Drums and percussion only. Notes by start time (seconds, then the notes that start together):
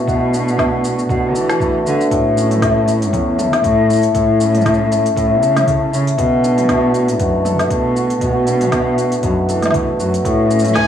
0.08 kick, shaker
0.34 shaker
0.48 shaker
0.59 kick, snare, shaker
0.85 shaker
0.99 shaker
1.09 kick, shaker
1.35 shaker
1.49 snare, shaker
1.60 kick, shaker
1.87 shaker
2.01 shaker
2.11 kick, open hi-hat, shaker
2.38 shaker
2.51 mid tom, open hi-hat, shaker
2.62 kick, snare, open hi-hat, shaker
2.88 open hi-hat, shaker
3.02 open hi-hat, shaker
3.13 kick, open hi-hat, shaker
3.39 mid tom, shaker
3.53 snare, open hi-hat, shaker
3.64 kick, open hi-hat, shaker
3.90 shaker
3.93 shaker
3.96 shaker
3.98 shaker
4.01 open hi-hat, shaker
4.04 shaker
4.15 kick, open hi-hat, shaker
4.41 shaker
4.55 mid tom, open hi-hat, shaker
4.61 shaker
4.66 kick, snare, open hi-hat, shaker
4.74 shaker
4.92 open hi-hat, shaker
5.06 open hi-hat, shaker
5.16 kick, open hi-hat, shaker
5.43 shaker
5.57 snare, mid tom, open hi-hat, shaker
5.67 kick, open hi-hat, shaker
5.94 shaker
6.07 open hi-hat, shaker
6.18 kick, open hi-hat, shaker
6.44 shaker
6.58 mid tom, open hi-hat, shaker
6.69 kick, snare, open hi-hat, shaker
6.94 open hi-hat, shaker
7.08 open hi-hat, shaker
7.20 kick, open hi-hat, shaker
7.45 mid tom, shaker
7.59 snare, open hi-hat, shaker
7.71 kick, open hi-hat, shaker
7.96 shaker
8.10 open hi-hat, shaker
8.21 kick, open hi-hat, shaker
8.47 open hi-hat, shaker
8.61 mid tom, open hi-hat, shaker
8.72 kick, snare, open hi-hat, shaker
8.98 open hi-hat, shaker
9.12 open hi-hat, shaker
9.23 kick, open hi-hat, shaker
9.49 open hi-hat, shaker
9.63 snare, mid tom, open hi-hat, shaker
9.66 snare
9.71 kick, snare, open hi-hat
9.75 shaker
10.00 shaker
10.14 open hi-hat, shaker
10.25 kick, open hi-hat, shaker
10.51 shaker
10.59 shaker
10.65 mid tom, open hi-hat, shaker
10.68 shaker
10.76 kick, snare, open hi-hat, shaker